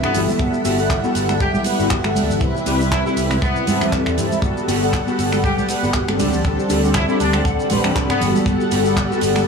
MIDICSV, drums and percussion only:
0, 0, Header, 1, 2, 480
1, 0, Start_track
1, 0, Key_signature, 1, "major"
1, 0, Tempo, 504202
1, 376, Time_signature, 4, 2, 24, 8
1, 9019, End_track
2, 0, Start_track
2, 0, Title_t, "Drums"
2, 31, Note_on_c, 9, 82, 40
2, 34, Note_on_c, 9, 26, 86
2, 126, Note_off_c, 9, 82, 0
2, 129, Note_off_c, 9, 26, 0
2, 138, Note_on_c, 9, 46, 107
2, 141, Note_on_c, 9, 64, 90
2, 141, Note_on_c, 9, 82, 91
2, 233, Note_off_c, 9, 46, 0
2, 236, Note_off_c, 9, 64, 0
2, 236, Note_off_c, 9, 82, 0
2, 270, Note_on_c, 9, 63, 63
2, 273, Note_on_c, 9, 82, 51
2, 365, Note_off_c, 9, 63, 0
2, 369, Note_off_c, 9, 82, 0
2, 375, Note_on_c, 9, 82, 65
2, 376, Note_on_c, 9, 36, 115
2, 471, Note_off_c, 9, 36, 0
2, 471, Note_off_c, 9, 82, 0
2, 511, Note_on_c, 9, 82, 40
2, 607, Note_off_c, 9, 82, 0
2, 618, Note_on_c, 9, 82, 89
2, 620, Note_on_c, 9, 46, 124
2, 713, Note_off_c, 9, 82, 0
2, 715, Note_off_c, 9, 46, 0
2, 749, Note_on_c, 9, 82, 51
2, 844, Note_off_c, 9, 82, 0
2, 856, Note_on_c, 9, 36, 120
2, 861, Note_on_c, 9, 60, 57
2, 864, Note_on_c, 9, 39, 110
2, 865, Note_on_c, 9, 82, 58
2, 951, Note_off_c, 9, 36, 0
2, 956, Note_off_c, 9, 60, 0
2, 960, Note_off_c, 9, 39, 0
2, 960, Note_off_c, 9, 82, 0
2, 990, Note_on_c, 9, 82, 40
2, 1085, Note_off_c, 9, 82, 0
2, 1096, Note_on_c, 9, 46, 93
2, 1104, Note_on_c, 9, 82, 82
2, 1191, Note_off_c, 9, 46, 0
2, 1199, Note_off_c, 9, 82, 0
2, 1226, Note_on_c, 9, 63, 63
2, 1230, Note_on_c, 9, 26, 62
2, 1232, Note_on_c, 9, 82, 50
2, 1321, Note_off_c, 9, 63, 0
2, 1325, Note_off_c, 9, 26, 0
2, 1327, Note_off_c, 9, 82, 0
2, 1335, Note_on_c, 9, 82, 58
2, 1337, Note_on_c, 9, 36, 122
2, 1430, Note_off_c, 9, 82, 0
2, 1433, Note_off_c, 9, 36, 0
2, 1464, Note_on_c, 9, 63, 69
2, 1473, Note_on_c, 9, 82, 43
2, 1559, Note_off_c, 9, 63, 0
2, 1565, Note_on_c, 9, 46, 106
2, 1568, Note_off_c, 9, 82, 0
2, 1576, Note_on_c, 9, 82, 88
2, 1660, Note_off_c, 9, 46, 0
2, 1671, Note_off_c, 9, 82, 0
2, 1712, Note_on_c, 9, 82, 57
2, 1807, Note_off_c, 9, 82, 0
2, 1816, Note_on_c, 9, 39, 116
2, 1817, Note_on_c, 9, 82, 55
2, 1819, Note_on_c, 9, 36, 117
2, 1911, Note_off_c, 9, 39, 0
2, 1912, Note_off_c, 9, 82, 0
2, 1915, Note_off_c, 9, 36, 0
2, 1945, Note_on_c, 9, 26, 86
2, 1945, Note_on_c, 9, 82, 39
2, 1946, Note_on_c, 9, 63, 73
2, 2040, Note_off_c, 9, 26, 0
2, 2040, Note_off_c, 9, 82, 0
2, 2042, Note_off_c, 9, 63, 0
2, 2051, Note_on_c, 9, 63, 97
2, 2060, Note_on_c, 9, 46, 93
2, 2060, Note_on_c, 9, 82, 88
2, 2147, Note_off_c, 9, 63, 0
2, 2155, Note_off_c, 9, 46, 0
2, 2155, Note_off_c, 9, 82, 0
2, 2190, Note_on_c, 9, 64, 83
2, 2196, Note_on_c, 9, 82, 47
2, 2285, Note_off_c, 9, 64, 0
2, 2291, Note_off_c, 9, 82, 0
2, 2294, Note_on_c, 9, 36, 121
2, 2302, Note_on_c, 9, 82, 60
2, 2390, Note_off_c, 9, 36, 0
2, 2397, Note_off_c, 9, 82, 0
2, 2425, Note_on_c, 9, 60, 53
2, 2440, Note_on_c, 9, 82, 38
2, 2521, Note_off_c, 9, 60, 0
2, 2534, Note_on_c, 9, 46, 110
2, 2536, Note_off_c, 9, 82, 0
2, 2537, Note_on_c, 9, 82, 85
2, 2629, Note_off_c, 9, 46, 0
2, 2632, Note_off_c, 9, 82, 0
2, 2675, Note_on_c, 9, 82, 49
2, 2770, Note_off_c, 9, 82, 0
2, 2779, Note_on_c, 9, 36, 99
2, 2783, Note_on_c, 9, 39, 122
2, 2783, Note_on_c, 9, 82, 58
2, 2784, Note_on_c, 9, 60, 52
2, 2875, Note_off_c, 9, 36, 0
2, 2878, Note_off_c, 9, 82, 0
2, 2879, Note_off_c, 9, 39, 0
2, 2879, Note_off_c, 9, 60, 0
2, 2920, Note_on_c, 9, 82, 39
2, 3015, Note_off_c, 9, 82, 0
2, 3017, Note_on_c, 9, 46, 97
2, 3019, Note_on_c, 9, 82, 90
2, 3112, Note_off_c, 9, 46, 0
2, 3114, Note_off_c, 9, 82, 0
2, 3148, Note_on_c, 9, 63, 69
2, 3149, Note_on_c, 9, 26, 63
2, 3153, Note_on_c, 9, 82, 54
2, 3243, Note_off_c, 9, 63, 0
2, 3244, Note_off_c, 9, 26, 0
2, 3248, Note_off_c, 9, 82, 0
2, 3257, Note_on_c, 9, 36, 127
2, 3266, Note_on_c, 9, 82, 56
2, 3352, Note_off_c, 9, 36, 0
2, 3361, Note_off_c, 9, 82, 0
2, 3390, Note_on_c, 9, 82, 38
2, 3485, Note_off_c, 9, 82, 0
2, 3486, Note_on_c, 9, 60, 36
2, 3495, Note_on_c, 9, 46, 105
2, 3501, Note_on_c, 9, 63, 92
2, 3502, Note_on_c, 9, 82, 88
2, 3581, Note_off_c, 9, 60, 0
2, 3590, Note_off_c, 9, 46, 0
2, 3596, Note_off_c, 9, 63, 0
2, 3597, Note_off_c, 9, 82, 0
2, 3629, Note_on_c, 9, 64, 75
2, 3631, Note_on_c, 9, 26, 81
2, 3637, Note_on_c, 9, 82, 50
2, 3724, Note_off_c, 9, 64, 0
2, 3726, Note_off_c, 9, 26, 0
2, 3732, Note_off_c, 9, 82, 0
2, 3735, Note_on_c, 9, 36, 99
2, 3740, Note_on_c, 9, 82, 60
2, 3741, Note_on_c, 9, 39, 116
2, 3830, Note_off_c, 9, 36, 0
2, 3835, Note_off_c, 9, 82, 0
2, 3836, Note_off_c, 9, 39, 0
2, 3867, Note_on_c, 9, 26, 76
2, 3877, Note_on_c, 9, 82, 38
2, 3962, Note_off_c, 9, 26, 0
2, 3972, Note_off_c, 9, 82, 0
2, 3975, Note_on_c, 9, 64, 78
2, 3977, Note_on_c, 9, 46, 91
2, 3983, Note_on_c, 9, 82, 92
2, 4070, Note_off_c, 9, 64, 0
2, 4072, Note_off_c, 9, 46, 0
2, 4078, Note_off_c, 9, 82, 0
2, 4111, Note_on_c, 9, 82, 48
2, 4113, Note_on_c, 9, 63, 63
2, 4207, Note_off_c, 9, 82, 0
2, 4209, Note_off_c, 9, 63, 0
2, 4210, Note_on_c, 9, 36, 118
2, 4224, Note_on_c, 9, 82, 63
2, 4305, Note_off_c, 9, 36, 0
2, 4319, Note_off_c, 9, 82, 0
2, 4355, Note_on_c, 9, 82, 40
2, 4450, Note_off_c, 9, 82, 0
2, 4460, Note_on_c, 9, 46, 110
2, 4463, Note_on_c, 9, 82, 85
2, 4555, Note_off_c, 9, 46, 0
2, 4558, Note_off_c, 9, 82, 0
2, 4596, Note_on_c, 9, 82, 51
2, 4691, Note_off_c, 9, 82, 0
2, 4693, Note_on_c, 9, 36, 102
2, 4697, Note_on_c, 9, 82, 54
2, 4702, Note_on_c, 9, 39, 111
2, 4702, Note_on_c, 9, 60, 52
2, 4788, Note_off_c, 9, 36, 0
2, 4792, Note_off_c, 9, 82, 0
2, 4798, Note_off_c, 9, 39, 0
2, 4798, Note_off_c, 9, 60, 0
2, 4833, Note_on_c, 9, 82, 40
2, 4928, Note_off_c, 9, 82, 0
2, 4939, Note_on_c, 9, 46, 104
2, 4947, Note_on_c, 9, 82, 82
2, 5034, Note_off_c, 9, 46, 0
2, 5042, Note_off_c, 9, 82, 0
2, 5069, Note_on_c, 9, 26, 62
2, 5071, Note_on_c, 9, 63, 61
2, 5075, Note_on_c, 9, 82, 54
2, 5164, Note_off_c, 9, 26, 0
2, 5166, Note_off_c, 9, 63, 0
2, 5170, Note_off_c, 9, 82, 0
2, 5177, Note_on_c, 9, 36, 119
2, 5187, Note_on_c, 9, 82, 66
2, 5273, Note_off_c, 9, 36, 0
2, 5282, Note_off_c, 9, 82, 0
2, 5314, Note_on_c, 9, 63, 60
2, 5316, Note_on_c, 9, 82, 40
2, 5409, Note_off_c, 9, 63, 0
2, 5412, Note_off_c, 9, 82, 0
2, 5412, Note_on_c, 9, 46, 102
2, 5420, Note_on_c, 9, 82, 77
2, 5508, Note_off_c, 9, 46, 0
2, 5515, Note_off_c, 9, 82, 0
2, 5559, Note_on_c, 9, 82, 47
2, 5654, Note_off_c, 9, 82, 0
2, 5655, Note_on_c, 9, 39, 101
2, 5656, Note_on_c, 9, 36, 115
2, 5657, Note_on_c, 9, 82, 58
2, 5750, Note_off_c, 9, 39, 0
2, 5751, Note_off_c, 9, 36, 0
2, 5752, Note_off_c, 9, 82, 0
2, 5790, Note_on_c, 9, 63, 63
2, 5790, Note_on_c, 9, 82, 44
2, 5793, Note_on_c, 9, 26, 79
2, 5885, Note_off_c, 9, 63, 0
2, 5885, Note_off_c, 9, 82, 0
2, 5888, Note_off_c, 9, 26, 0
2, 5896, Note_on_c, 9, 63, 88
2, 5897, Note_on_c, 9, 82, 86
2, 5898, Note_on_c, 9, 46, 101
2, 5992, Note_off_c, 9, 63, 0
2, 5993, Note_off_c, 9, 46, 0
2, 5993, Note_off_c, 9, 82, 0
2, 6026, Note_on_c, 9, 64, 75
2, 6027, Note_on_c, 9, 82, 50
2, 6121, Note_off_c, 9, 64, 0
2, 6122, Note_off_c, 9, 82, 0
2, 6138, Note_on_c, 9, 36, 112
2, 6139, Note_on_c, 9, 82, 59
2, 6233, Note_off_c, 9, 36, 0
2, 6234, Note_off_c, 9, 82, 0
2, 6279, Note_on_c, 9, 82, 42
2, 6374, Note_off_c, 9, 82, 0
2, 6377, Note_on_c, 9, 46, 110
2, 6377, Note_on_c, 9, 82, 92
2, 6472, Note_off_c, 9, 82, 0
2, 6473, Note_off_c, 9, 46, 0
2, 6517, Note_on_c, 9, 82, 51
2, 6612, Note_off_c, 9, 82, 0
2, 6614, Note_on_c, 9, 39, 111
2, 6616, Note_on_c, 9, 36, 97
2, 6621, Note_on_c, 9, 82, 65
2, 6624, Note_on_c, 9, 60, 54
2, 6709, Note_off_c, 9, 39, 0
2, 6711, Note_off_c, 9, 36, 0
2, 6716, Note_off_c, 9, 82, 0
2, 6719, Note_off_c, 9, 60, 0
2, 6749, Note_on_c, 9, 82, 42
2, 6844, Note_off_c, 9, 82, 0
2, 6855, Note_on_c, 9, 46, 90
2, 6860, Note_on_c, 9, 82, 88
2, 6951, Note_off_c, 9, 46, 0
2, 6955, Note_off_c, 9, 82, 0
2, 6980, Note_on_c, 9, 82, 53
2, 6982, Note_on_c, 9, 26, 71
2, 6988, Note_on_c, 9, 63, 58
2, 7075, Note_off_c, 9, 82, 0
2, 7077, Note_off_c, 9, 26, 0
2, 7083, Note_off_c, 9, 63, 0
2, 7093, Note_on_c, 9, 36, 119
2, 7106, Note_on_c, 9, 82, 60
2, 7188, Note_off_c, 9, 36, 0
2, 7201, Note_off_c, 9, 82, 0
2, 7233, Note_on_c, 9, 82, 39
2, 7328, Note_off_c, 9, 82, 0
2, 7329, Note_on_c, 9, 46, 110
2, 7340, Note_on_c, 9, 63, 94
2, 7342, Note_on_c, 9, 82, 90
2, 7343, Note_on_c, 9, 60, 41
2, 7424, Note_off_c, 9, 46, 0
2, 7435, Note_off_c, 9, 63, 0
2, 7437, Note_off_c, 9, 82, 0
2, 7439, Note_off_c, 9, 60, 0
2, 7466, Note_on_c, 9, 26, 82
2, 7467, Note_on_c, 9, 64, 83
2, 7467, Note_on_c, 9, 82, 54
2, 7561, Note_off_c, 9, 26, 0
2, 7562, Note_off_c, 9, 82, 0
2, 7563, Note_off_c, 9, 64, 0
2, 7576, Note_on_c, 9, 36, 103
2, 7582, Note_on_c, 9, 39, 101
2, 7582, Note_on_c, 9, 82, 61
2, 7671, Note_off_c, 9, 36, 0
2, 7677, Note_off_c, 9, 39, 0
2, 7677, Note_off_c, 9, 82, 0
2, 7711, Note_on_c, 9, 26, 87
2, 7715, Note_on_c, 9, 82, 45
2, 7806, Note_off_c, 9, 26, 0
2, 7810, Note_off_c, 9, 82, 0
2, 7814, Note_on_c, 9, 64, 70
2, 7821, Note_on_c, 9, 46, 98
2, 7824, Note_on_c, 9, 82, 92
2, 7909, Note_off_c, 9, 64, 0
2, 7916, Note_off_c, 9, 46, 0
2, 7919, Note_off_c, 9, 82, 0
2, 7952, Note_on_c, 9, 63, 52
2, 7955, Note_on_c, 9, 82, 54
2, 8047, Note_off_c, 9, 63, 0
2, 8050, Note_off_c, 9, 82, 0
2, 8054, Note_on_c, 9, 36, 110
2, 8068, Note_on_c, 9, 82, 64
2, 8149, Note_off_c, 9, 36, 0
2, 8163, Note_off_c, 9, 82, 0
2, 8193, Note_on_c, 9, 82, 44
2, 8288, Note_off_c, 9, 82, 0
2, 8296, Note_on_c, 9, 82, 88
2, 8298, Note_on_c, 9, 46, 113
2, 8392, Note_off_c, 9, 82, 0
2, 8393, Note_off_c, 9, 46, 0
2, 8431, Note_on_c, 9, 82, 56
2, 8526, Note_off_c, 9, 82, 0
2, 8536, Note_on_c, 9, 36, 94
2, 8545, Note_on_c, 9, 39, 110
2, 8546, Note_on_c, 9, 60, 56
2, 8546, Note_on_c, 9, 82, 61
2, 8631, Note_off_c, 9, 36, 0
2, 8640, Note_off_c, 9, 39, 0
2, 8641, Note_off_c, 9, 60, 0
2, 8641, Note_off_c, 9, 82, 0
2, 8681, Note_on_c, 9, 82, 39
2, 8771, Note_on_c, 9, 46, 107
2, 8776, Note_off_c, 9, 82, 0
2, 8785, Note_on_c, 9, 82, 97
2, 8866, Note_off_c, 9, 46, 0
2, 8880, Note_off_c, 9, 82, 0
2, 8906, Note_on_c, 9, 63, 58
2, 8909, Note_on_c, 9, 26, 68
2, 8916, Note_on_c, 9, 82, 55
2, 9001, Note_off_c, 9, 63, 0
2, 9004, Note_off_c, 9, 26, 0
2, 9012, Note_off_c, 9, 82, 0
2, 9019, End_track
0, 0, End_of_file